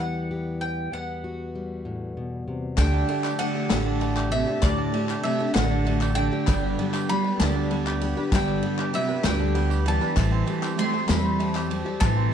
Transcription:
Already playing: steel-string acoustic guitar E2 G3 G4
0.00 steel-string acoustic guitar E3 B3, mandolin F#5
0.31 steel-string acoustic guitar G4
0.61 mandolin G5
0.92 steel-string acoustic guitar E2 B3, mandolin F#5
1.24 steel-string acoustic guitar F#4
1.55 steel-string acoustic guitar G3
1.85 steel-string acoustic guitar A2
2.17 steel-string acoustic guitar B2
2.48 steel-string acoustic guitar C3
2.77 upright bass D2, twelve-string acoustic guitar D3 A3 D4 G4, cello D3, five-string banjo A3, harmonium G4 A4 D5 A5, mandolin G5, kick, clap, ride, tambourine
2.94 five-string banjo D4
3.07 twelve-string acoustic guitar D3 A3 D4 G4, five-string banjo A3, ride, tambourine
3.24 five-string banjo G4, clap, tambourine
3.39 twelve-string acoustic guitar D3 A3 D4 G4, cello D3, five-string banjo A3, mandolin F#5, ride
3.54 twelve-string acoustic guitar A3 D4 G4, five-string banjo A4
3.69 upright bass A1, twelve-string acoustic guitar D3 A3 D4 G4, snare, clap, ride, tambourine
3.86 five-string banjo D4
4.00 twelve-string acoustic guitar D3 A3 D4 G4, five-string banjo A3, clap, ride
4.17 five-string banjo G4, clap, tambourine
4.31 cello C3, twelve-string acoustic guitar D3 A3 D4 G4, five-string banjo A3, mandolin E5, ride, tambourine
4.46 twelve-string acoustic guitar A3 D4 G4, five-string banjo A4
4.61 upright bass D2, cello A2, twelve-string acoustic guitar D3 A3 D4 G4, five-string banjo A3, mandolin D5, harmonium A5, kick, clap, ride, tambourine
4.78 five-string banjo D4
4.92 twelve-string acoustic guitar D3 A3 D4 G4, five-string banjo A3, ride, tambourine
5.09 five-string banjo G4, clap, tambourine
5.23 cello C3, twelve-string acoustic guitar D3 A3 D4 G4, five-string banjo A3, mandolin E5, ride
5.38 twelve-string acoustic guitar A3 D4 G4, five-string banjo A4
5.53 upright bass A1, cello D3, twelve-string acoustic guitar D3 A3 D4 G4, mandolin F#5, snare, clap, ride, tambourine
5.71 five-string banjo D4
5.85 twelve-string acoustic guitar D3 A3 D4 G4, five-string banjo A3, clap, ride
6.01 five-string banjo G4, clap, tambourine
6.15 cello D3, twelve-string acoustic guitar D3 A3 D4, five-string banjo A3, mandolin G5, ride, tambourine
6.19 twelve-string acoustic guitar G4
6.32 twelve-string acoustic guitar A3 D4 G4, five-string banjo A4
6.47 upright bass G1, twelve-string acoustic guitar G2 D3 G3 B3 D4 G4, five-string banjo B3, harmonium B4 D5 B5, kick, clap, ride, tambourine
6.63 five-string banjo D4
6.79 twelve-string acoustic guitar G3 B3 D4 G4, five-string banjo B3, ride, tambourine
6.93 five-string banjo G4, clap, tambourine
7.09 cello G3, twelve-string acoustic guitar G3 B3 D4, five-string banjo B3, mandolin B5, ride
7.13 twelve-string acoustic guitar G4
7.24 twelve-string acoustic guitar G3 B3 D4 G4, five-string banjo B4
7.39 upright bass D2, twelve-string acoustic guitar G2 D3 G3 B3 D4 G4, cello D3, mandolin A5, snare, clap, ride, tambourine
7.55 five-string banjo D4
7.71 twelve-string acoustic guitar G3 B3 D4 G4, five-string banjo B3, clap, ride
7.86 five-string banjo G4, clap, tambourine
8.01 twelve-string acoustic guitar G3 B3 D4 G4, five-string banjo B3, ride, tambourine
8.16 twelve-string acoustic guitar G3 B3 D4 G4, five-string banjo B4
8.32 upright bass G1, twelve-string acoustic guitar G2 D3 G3 B3 D4 G4, cello D3, five-string banjo B3, mandolin G5, kick, clap, ride, tambourine
8.48 five-string banjo D4, clap
8.63 twelve-string acoustic guitar G3 B3 D4 G4, five-string banjo B3, ride
8.79 five-string banjo G4, clap
8.93 cello C3, twelve-string acoustic guitar G3 B3 D4 G4, five-string banjo B3, mandolin E5, clap, ride
9.09 twelve-string acoustic guitar G3 B3 D4 G4, five-string banjo B4
9.24 upright bass D2, twelve-string acoustic guitar G2 D3 G3 B3 D4 G4, cello D3, mandolin G5, snare, clap, ride, tambourine
9.40 five-string banjo D4, clap, tambourine
9.54 twelve-string acoustic guitar G3 B3 D4 G4, five-string banjo B3, ride
9.70 five-string banjo G4, tambourine
9.86 cello E3, twelve-string acoustic guitar G3 B3 D4 G4, five-string banjo B3, mandolin A5, ride
10.00 twelve-string acoustic guitar G3 B3 D4 G4, five-string banjo B4, clap, tambourine
10.15 upright bass A1, twelve-string acoustic guitar A2 E3 G3 C4 G4, five-string banjo A3, harmonium C5 E5 A5, kick, clap, ride, tambourine
10.32 five-string banjo C4
10.46 twelve-string acoustic guitar E3 G3 C4 G4, five-string banjo A3, ride, tambourine
10.62 five-string banjo G4, clap, tambourine
10.77 twelve-string acoustic guitar E3 G3 C4 G4, five-string banjo A3, cello A3, mandolin C6, ride
10.93 twelve-string acoustic guitar G3 C4 G4, five-string banjo A4
11.08 upright bass E2, twelve-string acoustic guitar A2 E3 G3 C4 G4, cello G3, mandolin B5, snare, clap, ride, tambourine
11.25 five-string banjo C4
11.39 twelve-string acoustic guitar E3 G3 C4 G4, five-string banjo A3, clap, ride
11.55 five-string banjo G4, clap, tambourine
11.70 twelve-string acoustic guitar E3 G3 C4 G4, five-string banjo A3, ride, tambourine
11.85 twelve-string acoustic guitar G3 C4 G4, five-string banjo A4
12.00 upright bass A1, twelve-string acoustic guitar A2 E3 G3 C4 G4, cello E3, five-string banjo A3, mandolin A5, kick, clap, ride, tambourine
12.17 five-string banjo C4

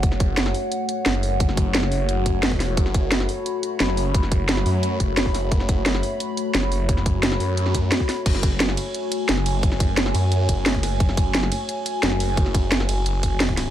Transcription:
Already playing: analog synth pad A3 F#4 C#5 F#5
0.03 detuned saw bass F#1, kick, closed hi-hat
0.12 snare
0.20 kick, closed hi-hat
0.37 snare, closed hi-hat
0.46 snare
0.54 open hi-hat
0.72 closed hi-hat
0.89 closed hi-hat
1.06 detuned saw bass F#1, snare, closed hi-hat
1.14 snare
1.23 open hi-hat
1.40 kick, closed hi-hat
1.49 snare
1.57 kick, closed hi-hat
1.74 snare, closed hi-hat
1.83 snare
1.92 detuned saw bass F#1, open hi-hat
2.09 closed hi-hat
2.26 kick, closed hi-hat
2.43 snare, closed hi-hat
2.52 detuned saw bass F1, kick
2.60 snare, open hi-hat
2.77 detuned saw bass F#1, analog synth pad B5, kick, closed hi-hat
2.86 snare
2.94 kick, closed hi-hat
3.12 snare, closed hi-hat
3.20 snare
3.29 open hi-hat
3.46 closed hi-hat
3.63 closed hi-hat
3.80 detuned saw bass F#1, snare, closed hi-hat
3.89 snare
3.97 open hi-hat
4.14 kick, closed hi-hat
4.23 snare
4.32 kick, closed hi-hat
4.49 snare, closed hi-hat
4.57 snare
4.66 detuned saw bass F#2, open hi-hat
4.83 closed hi-hat
5.00 detuned saw bass F#1, kick, closed hi-hat
5.17 detuned saw bass F#1, snare, closed hi-hat
5.26 kick
5.34 snare, open hi-hat
5.52 detuned saw bass F#1, kick, closed hi-hat
5.60 snare
5.69 kick, closed hi-hat
5.86 snare, closed hi-hat
5.95 snare
6.03 open hi-hat
6.20 closed hi-hat
6.37 closed hi-hat
6.54 detuned saw bass F#1, snare, closed hi-hat
6.63 snare
6.72 open hi-hat
6.89 kick, closed hi-hat
6.97 snare
7.06 kick, closed hi-hat
7.23 snare, closed hi-hat
7.32 snare
7.40 detuned saw bass F#2, open hi-hat
7.57 closed hi-hat
7.66 snare
7.74 kick, closed hi-hat
7.92 snare, closed hi-hat
8.00 kick
8.09 snare, open hi-hat
8.26 detuned saw bass F#1, analog synth pad G#5, kick, closed hi-hat, crash
8.35 snare
8.43 kick, closed hi-hat, ride bell
8.60 snare, closed hi-hat
8.69 snare
8.77 open hi-hat, ride bell
8.95 closed hi-hat
9.12 closed hi-hat, ride bell
9.29 detuned saw bass F#1, snare, closed hi-hat
9.37 snare
9.46 open hi-hat, ride bell
9.63 kick, closed hi-hat
9.72 snare
9.80 kick, closed hi-hat, ride bell
9.97 snare, closed hi-hat
10.06 snare
10.14 detuned saw bass F#2, open hi-hat, ride bell
10.32 closed hi-hat
10.49 detuned saw bass F#1, kick, closed hi-hat, ride bell
10.66 detuned saw bass F#1, snare, closed hi-hat
10.74 kick
10.83 snare, open hi-hat, ride bell
11.00 detuned saw bass F#1, kick, closed hi-hat
11.09 snare
11.17 kick, closed hi-hat, ride bell
11.35 snare, closed hi-hat
11.43 snare
11.52 open hi-hat, ride bell
11.69 closed hi-hat
11.86 closed hi-hat, ride bell
12.03 detuned saw bass F#1, snare, closed hi-hat
12.12 snare
12.20 open hi-hat, ride bell
12.37 kick, closed hi-hat
12.46 snare
12.55 kick, closed hi-hat, ride bell
12.72 snare, closed hi-hat
12.80 snare
12.89 detuned saw bass F#1, open hi-hat, ride bell
13.06 closed hi-hat
13.23 kick, closed hi-hat, ride bell
13.40 snare, closed hi-hat
13.49 kick
13.57 snare, open hi-hat, ride bell

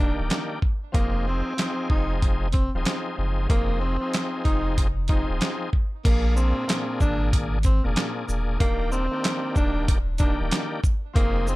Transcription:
Already playing: sub bass D#1, tenor saxophone D4
0.00 tonewheel organ D#3 A#3 D4 G4
0.19 sub bass D1
0.30 snare, clap, closed hi-hat
0.62 kick
0.92 sub bass F1, tonewheel organ F3 C4 D#4 G#4, tenor saxophone A#3, kick, closed hi-hat
1.28 tenor saxophone C4
1.57 tonewheel organ F3 C4 D#4 G#4, snare, clap, closed hi-hat
1.90 sub bass F1, tenor saxophone D#4, kick
2.22 kick, closed hi-hat
2.52 tenor saxophone C4, kick, closed hi-hat
2.74 sub bass D#1, tonewheel organ F3 C4 D#4 G#4
2.85 snare, clap, closed hi-hat
3.16 sub bass F#1, tonewheel organ F3 C4 D#4 G#4
3.48 sub bass F1, tonewheel organ F3 C4 D#4 G#4, tenor saxophone A#3, kick, closed hi-hat
3.81 tenor saxophone C4
4.00 tonewheel organ F3 C4 D#4 G#4
4.14 snare, clap, closed hi-hat
4.44 sub bass F1, tenor saxophone D#4, kick, closed hi-hat
4.78 kick, closed hi-hat
5.08 tonewheel organ F3 C4 D#4 G#4, tenor saxophone D#4, kick, closed hi-hat
5.30 sub bass D#1
5.41 snare, clap, closed hi-hat
5.73 kick
6.05 sub bass A#1, tonewheel organ A#2 A#3 D4 G#4, tenor saxophone A#3, kick, closed hi-hat, crash
6.36 tenor saxophone C4, shaker
6.67 tonewheel organ A#2 A#3 D4 G#4, snare, clap, closed hi-hat
7.00 sub bass G#1, tenor saxophone D4, kick, shaker
7.33 kick, closed hi-hat
7.63 tenor saxophone C4, kick, closed hi-hat, shaker
7.83 sub bass F1, tonewheel organ A#2 A#3 D4 G#4
7.96 snare, clap, closed hi-hat
8.26 sub bass E1, tonewheel organ A#2 A#3 D4 G#4, shaker
8.58 sub bass D#1, tonewheel organ D#3 A#3 D4 G4, tenor saxophone A#3, kick, closed hi-hat
8.92 tenor saxophone C4, shaker
9.11 tonewheel organ D#3 A#3 D4 G4
9.24 snare, clap, closed hi-hat
9.56 sub bass D#1, tenor saxophone D4, kick, shaker
9.88 kick, closed hi-hat
10.18 tonewheel organ D#3 A#3 D4 G4, tenor saxophone D4, kick, closed hi-hat, shaker
10.40 sub bass D1
10.51 snare, clap, closed hi-hat
10.84 kick, shaker
11.14 sub bass F1, tonewheel organ F3 C4 D#4 G#4, tenor saxophone A#3, kick, closed hi-hat
11.47 tenor saxophone C4, shaker

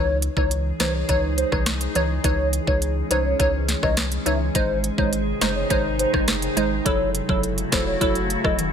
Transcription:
Already playing: sub bass C#2, synth pluck E3 D#4 C#5, ambient pad E3 G#3 D#4 G#4, soft synth lead C#5
0.22 closed hi-hat
0.37 sub bass C#2, synth pluck E3 D#4 C#5, soft synth lead C#5, kick
0.51 closed hi-hat
0.80 sub bass C2, synth pluck E3 D#4 C#5, soft synth lead C5, cross-stick, snare, closed hi-hat
0.94 soft synth lead C#5
1.09 sub bass C#2, synth pluck E3 D#4 C#5, soft synth lead C#5, kick, closed hi-hat
1.38 soft synth lead C5, closed hi-hat
1.52 sub bass C2, synth pluck E3 D#4 C#5, kick, cross-stick
1.66 cross-stick, snare, closed hi-hat
1.81 closed hi-hat
1.95 sub bass C#2, synth pluck E3 D#4 C#5, closed hi-hat
2.24 sub bass C#2, synth pluck E3 D#4 C#5, ambient pad C#4, soft synth lead C#5, kick, closed hi-hat
2.53 closed hi-hat
2.67 sub bass C#2, synth pluck E3 D#4 C#5, soft synth lead C#5, kick
2.82 closed hi-hat
3.11 sub bass C2, synth pluck E3 D#4 C#5, soft synth lead C5, closed hi-hat
3.25 soft synth lead C#5
3.39 sub bass C#2, synth pluck E3 D#4 C#5, soft synth lead C#5, kick, closed hi-hat
3.68 snare, closed hi-hat
3.83 sub bass C2, synth pluck E3 D#4 C#5, soft synth lead D#5, kick, cross-stick
3.97 cross-stick, snare, closed hi-hat
4.12 closed hi-hat
4.26 sub bass C#2, synth pluck E3 D#4 C#5, soft synth lead E5, closed hi-hat
4.55 sub bass G#1, ambient pad C3 D#3 D#4 G#4, synth pluck G#3 D#4 C5, soft synth lead C5, kick, closed hi-hat
4.84 closed hi-hat
4.98 sub bass G#1, synth pluck G#3 D#4 C5, soft synth lead C#5, kick
5.13 closed hi-hat
5.41 sub bass F#1, synth pluck G#3 D#4 C5, soft synth lead C5, cross-stick, snare, closed hi-hat
5.56 soft synth lead C#5
5.70 sub bass G#1, synth pluck G#3 D#4 C5, soft synth lead C#5, kick, closed hi-hat
5.99 soft synth lead C5, closed hi-hat
6.13 sub bass F#1, synth pluck G#3 D#4 C5, kick, cross-stick
6.28 cross-stick, snare, closed hi-hat
6.42 closed hi-hat
6.57 sub bass G#1, synth pluck G#3 D#4 C5, closed hi-hat
6.85 sub bass F#1, ambient pad C#3 F#3 A3 E4 F#4, synth pluck F#3 E4 A4, soft synth lead C#5, kick, closed hi-hat
7.15 closed hi-hat
7.29 sub bass F#1, synth pluck F#3 E4 A4, soft synth lead C#5, kick
7.43 closed hi-hat
7.58 closed hi-hat
7.72 sub bass E1, synth pluck F#3 E4 A4, soft synth lead C5, kick, cross-stick, snare, closed hi-hat
7.87 soft synth lead C#5
8.01 sub bass F#1, synth pluck F#3 E4 A4, soft synth lead C#5, kick, closed hi-hat
8.15 closed hi-hat
8.30 closed hi-hat
8.44 sub bass E1, synth pluck F#3 E4 A4, soft synth lead D#5, kick, cross-stick
8.59 closed hi-hat, high tom

